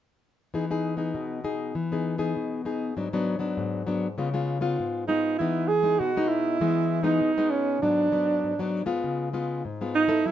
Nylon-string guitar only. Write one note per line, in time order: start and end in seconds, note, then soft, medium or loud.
0.54 1.12 E3 medium
0.54 0.64 B3 soft
0.54 0.64 D#4 soft
0.54 0.65 G#4 soft
0.70 0.95 B3 soft
0.70 0.95 D#4 soft
0.70 0.96 G#4 medium
0.97 1.39 B3 soft
0.97 1.39 D#4 soft
0.97 1.40 G#4 soft
1.14 1.72 B2 medium
1.44 1.73 B3 soft
1.44 1.73 D#4 medium
1.44 1.73 G#4 medium
1.75 2.33 E3 medium
1.92 2.17 B3 medium
1.92 2.17 D#4 medium
1.92 2.17 G#4 medium
2.18 2.60 B3 medium
2.18 2.61 D#4 medium
2.18 2.61 G#4 medium
2.36 2.94 B2 medium
2.65 2.94 B3 soft
2.65 2.94 D#4 soft
2.65 2.94 G#4 medium
2.97 3.55 G#2 medium
2.97 3.07 F#3 soft
2.97 3.07 B3 soft
2.97 3.08 D4 medium
3.13 3.38 F#3 medium
3.13 3.38 B3 medium
3.13 3.39 D4 medium
3.39 3.82 F#3 soft
3.39 3.82 B3 medium
3.39 3.82 D4 medium
3.57 4.15 G#2 medium
3.87 4.07 F#3 medium
3.87 4.07 B3 soft
3.87 4.07 D4 soft
4.18 4.76 C#3 medium
4.18 4.29 G#3 medium
4.18 4.29 B3 soft
4.18 4.29 F4 medium
4.34 4.59 G#3 medium
4.34 4.59 B3 medium
4.34 4.59 F4 medium
4.61 5.03 G#3 medium
4.61 5.03 B3 medium
4.61 5.04 F4 medium
4.79 5.37 G#2 medium
5.08 5.37 G#3 soft
5.08 5.37 B3 soft
5.08 5.38 F4 medium
5.40 5.98 E3 medium
5.40 5.69 G#3 medium
5.40 5.69 B3 medium
5.40 5.69 D#4 medium
5.83 6.10 G#3 medium
5.83 6.10 B3 soft
5.83 6.10 D#4 medium
6.00 6.58 B2 medium
6.17 6.57 G#3 medium
6.17 6.57 B3 medium
6.17 6.57 D#4 medium
6.61 7.19 E3 medium
6.61 7.02 G#3 medium
6.61 7.02 B3 medium
7.03 7.31 G#3 medium
7.03 7.31 B3 medium
7.03 7.31 D#4 medium
7.21 7.79 B2 medium
7.38 7.78 G#3 medium
7.38 7.78 B3 medium
7.38 7.78 D#4 medium
7.82 8.40 G#2 medium
7.82 8.08 F#3 medium
7.82 8.08 B3 medium
7.82 8.09 D4 medium
8.12 8.53 F#3 medium
8.12 8.53 B3 soft
8.12 8.54 D4 soft
8.44 9.01 G#2 medium
8.59 8.84 F#3 medium
8.59 8.85 B3 medium
8.59 8.85 D4 medium
8.86 9.28 G#3 medium
8.86 9.28 B3 medium
8.86 9.28 F4 medium
9.04 9.62 C#3 medium
9.33 9.62 G#3 medium
9.33 9.62 B3 medium
9.33 9.63 F4 medium
9.65 10.22 G#2 medium
9.81 10.06 G#3 medium
9.81 10.06 B3 medium
9.81 10.06 F4 medium
10.08 10.31 B3 medium
10.08 10.31 E4 medium
10.08 10.31 A4 medium
10.26 10.31 F#3 medium